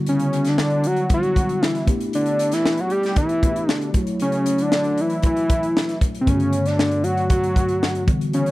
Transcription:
0.00 1.08 D3 medium
0.00 1.07 G3 medium
0.00 1.08 B3 soft
0.00 1.08 E4 medium
0.00 1.09 F#4 medium
0.07 0.50 C#4 medium
0.07 closed hi-hat medium
0.19 closed hi-hat soft
0.33 closed hi-hat medium
0.45 snare soft
0.45 closed hi-hat soft
0.49 0.88 D4 medium
0.58 snare loud
0.70 closed hi-hat soft
0.84 1.11 F#4 loud
0.84 closed hi-hat medium
0.96 closed hi-hat soft
1.09 1.87 G3 soft
1.09 1.85 B3 soft
1.09 1.86 D4 soft
1.09 1.87 E4 soft
1.09 1.88 F#4 soft
1.09 kick medium
1.09 closed hi-hat medium
1.14 1.67 F#4 medium
1.23 closed hi-hat soft
1.36 kick medium
1.36 closed hi-hat medium
1.49 closed hi-hat soft
1.63 snare medium
1.67 1.86 E4 medium
1.75 snare soft
1.75 closed hi-hat medium
1.86 3.39 A3 medium
1.86 3.39 B3 medium
1.86 3.40 D4 medium
1.86 3.40 E4 medium
1.86 3.40 G4 medium
1.86 kick medium
1.86 closed hi-hat medium
2.00 closed hi-hat soft
2.13 2.55 D4 medium
2.13 closed hi-hat medium
2.26 closed hi-hat soft
2.39 closed hi-hat medium
2.52 2.82 E4 medium
2.52 snare soft
2.52 closed hi-hat medium
2.66 snare medium
2.78 2.93 F#4 medium
2.78 closed hi-hat soft
2.90 3.17 G4 loud
2.90 closed hi-hat medium
3.03 snare soft
3.03 closed hi-hat soft
3.16 3.72 E4 medium
3.16 kick medium
3.16 closed hi-hat medium
3.29 closed hi-hat soft
3.42 3.92 A3 soft
3.42 3.94 B3 soft
3.42 3.94 D4 soft
3.42 3.93 E4 soft
3.42 3.49 F#4 soft
3.42 kick medium
3.42 closed hi-hat medium
3.49 3.98 G4 soft
3.56 closed hi-hat soft
3.69 3.91 D4 medium
3.69 snare loud
3.82 closed hi-hat medium
3.93 5.96 F#3 medium
3.93 5.97 A3 medium
3.93 5.97 E4 medium
3.93 5.97 F#4 medium
3.93 5.97 C#5 soft
3.93 kick medium
3.93 closed hi-hat medium
4.07 closed hi-hat soft
4.20 4.63 C#4 medium
4.20 closed hi-hat medium
4.32 closed hi-hat soft
4.46 closed hi-hat medium
4.58 5.02 D4 loud
4.58 closed hi-hat soft
4.72 snare loud
4.84 closed hi-hat soft
4.98 5.25 E4 loud
4.98 closed hi-hat medium
5.10 closed hi-hat soft
5.22 5.98 E4 loud
5.22 kick medium
5.22 closed hi-hat medium
5.37 closed hi-hat soft
5.50 kick medium
5.50 closed hi-hat medium
5.63 closed hi-hat soft
5.77 snare loud
5.89 snare soft
5.89 closed hi-hat medium
6.01 kick medium
6.01 closed hi-hat medium
6.15 closed hi-hat soft
6.21 8.03 G2 soft
6.21 6.29 C4 medium
6.25 8.03 D3 soft
6.25 8.04 A3 soft
6.25 8.04 B3 soft
6.25 6.68 C#4 medium
6.25 6.34 F4 soft
6.25 8.04 C#5 soft
6.25 kick medium
6.25 closed hi-hat medium
6.34 8.07 F#4 medium
6.40 closed hi-hat soft
6.53 closed hi-hat medium
6.66 7.05 D4 medium
6.66 snare soft
6.66 closed hi-hat soft
6.79 snare medium
6.91 closed hi-hat soft
7.03 7.29 F#4 medium
7.03 closed hi-hat medium
7.17 closed hi-hat soft
7.30 8.03 F#4 loud
7.30 kick medium
7.30 closed hi-hat medium
7.44 closed hi-hat soft
7.56 kick medium
7.56 closed hi-hat medium
7.69 closed hi-hat soft
7.83 snare medium
7.95 closed hi-hat soft
8.06 8.51 D3 medium
8.06 8.51 E3 medium
8.06 8.51 G3 medium
8.06 8.51 B3 soft
8.06 8.51 F#4 medium
8.06 kick loud
8.06 closed hi-hat medium
8.21 closed hi-hat medium
8.33 8.51 C#4 medium
8.33 closed hi-hat medium
8.46 closed hi-hat soft

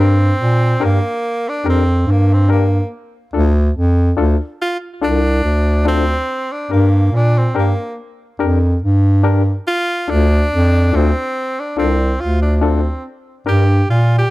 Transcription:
0.00 0.33 G2 loud
0.00 0.86 C4 loud
0.00 0.13 D4 medium
0.00 0.14 G4 medium
0.00 0.14 A#4 medium
0.39 0.76 A#2 medium
0.80 1.00 G2 medium
0.80 0.98 D4 medium
0.80 0.98 G4 medium
0.80 0.99 A#4 loud
0.85 1.50 A#3 medium
1.49 1.67 D4 loud
1.64 2.02 F2 medium
1.64 1.82 D4 medium
1.64 1.83 G4 medium
1.64 1.83 A#4 loud
1.69 2.13 C4 medium
2.07 2.81 G2 medium
2.11 2.35 A#3 medium
2.33 2.51 C4 medium
2.48 2.90 A#3 medium
2.48 2.67 D4 medium
2.48 2.67 G4 medium
2.48 2.67 A#4 loud
3.33 3.71 D2 loud
3.33 3.51 D4 medium
3.33 3.51 F4 medium
3.33 3.52 A4 loud
3.76 4.13 F2 loud
4.17 4.37 D2 medium
4.17 4.35 D4 loud
4.17 4.35 F4 medium
4.17 4.36 A4 loud
4.62 4.78 F4 loud
5.02 5.39 C2 medium
5.02 5.20 D4 medium
5.02 5.83 D4 loud
5.02 5.20 F4 medium
5.02 5.20 A4 loud
5.44 6.18 D2 medium
5.85 6.53 C4 loud
5.85 6.04 D4 loud
5.85 6.04 F4 medium
5.85 6.04 A4 loud
6.52 6.71 D4 medium
6.70 7.08 G2 loud
6.70 7.17 A#3 medium
6.70 6.88 D4 medium
6.70 6.89 G4 medium
6.70 6.89 A#4 loud
7.12 7.50 A#2 medium
7.12 7.39 D4 loud
7.38 7.57 C4 medium
7.54 7.75 G2 medium
7.54 7.96 A#3 medium
7.54 7.73 D4 loud
7.54 7.73 G4 medium
7.54 7.73 A#4 loud
8.39 8.77 F2 medium
8.39 8.57 D4 medium
8.39 8.58 G4 medium
8.39 8.58 A#4 loud
8.82 9.57 G2 loud
9.23 9.42 D4 loud
9.23 9.42 G4 medium
9.23 9.42 A#4 loud
9.68 10.12 F4 loud
10.08 10.46 D2 loud
10.08 10.26 D4 medium
10.08 10.97 D4 loud
10.08 10.26 F4 medium
10.08 10.27 A4 loud
10.52 10.89 F2 loud
10.93 11.12 D2 loud
10.93 11.61 C4 loud
10.93 11.11 D4 loud
10.93 11.11 F4 medium
10.93 11.11 A4 loud
11.60 11.78 D4 medium
11.77 12.15 C2 medium
11.77 12.22 C4 medium
11.77 11.95 D4 loud
11.77 11.95 F4 medium
11.77 11.96 A4 loud
12.20 12.95 D2 medium
12.20 12.41 F4 medium
12.42 12.56 D4 medium
12.56 12.64 D4 soft
12.62 13.04 C4 medium
12.62 12.80 D4 loud
12.62 12.80 F4 medium
12.62 12.80 A4 loud
13.46 13.84 G2 loud
13.46 13.64 D4 medium
13.46 13.64 G4 medium
13.46 13.87 G4 loud
13.46 13.64 A#4 loud
13.89 14.26 A#2 loud
13.89 14.15 F4 medium
14.18 14.30 G4 loud

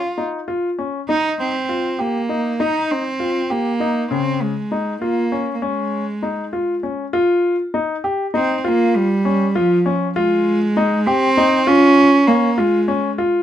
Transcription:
0.00 0.18 F4 medium
0.18 0.38 D#4 medium
0.48 0.69 F4 medium
0.79 0.99 C#4 medium
1.09 1.50 D#4 medium
1.09 1.37 D#4 medium
1.39 2.02 C4 medium
1.69 1.90 F4 medium
1.99 2.62 A#3 medium
1.99 2.20 G4 medium
2.29 2.50 D#4 medium
2.60 3.01 D#4 medium
2.60 2.93 D#4 medium
2.91 3.52 C4 medium
3.20 3.41 F4 medium
3.50 4.11 A#3 medium
3.50 3.71 G4 medium
3.80 4.01 D#4 medium
4.11 4.52 C#3 medium
4.11 4.44 C4 medium
4.42 5.02 G#3 medium
4.72 4.92 D#4 medium
5.02 5.52 A#3 medium
5.02 5.22 F4 medium
5.32 5.53 C#4 medium
5.54 5.64 A#3 soft
5.62 6.83 G#3 medium
5.62 6.04 C#4 medium
6.23 6.43 D#4 medium
6.53 6.74 F4 medium
6.83 7.04 C#4 medium
7.13 7.55 F4 medium
7.74 7.95 D#4 medium
8.04 8.25 G4 medium
8.34 8.58 C4 medium
8.34 8.55 D#4 medium
8.58 8.70 C4 medium
8.64 8.98 A#3 loud
8.64 9.06 F4 medium
8.96 9.58 G3 medium
9.25 9.46 C#4 medium
9.55 10.02 F3 medium
9.55 9.76 F4 medium
9.86 10.06 C#4 medium
10.16 11.08 G#3 loud
10.16 10.57 F4 medium
10.77 10.97 D#4 medium
11.07 11.69 C4 loud
11.07 11.28 G4 medium
11.37 11.58 D#4 medium
11.67 12.29 C#4 loud
11.67 12.09 F4 medium
12.27 12.60 A#3 medium
12.27 12.49 C#4 medium
12.58 13.04 G#3 medium
12.58 12.79 F4 medium
12.88 13.09 C#4 medium
13.18 13.43 F4 medium

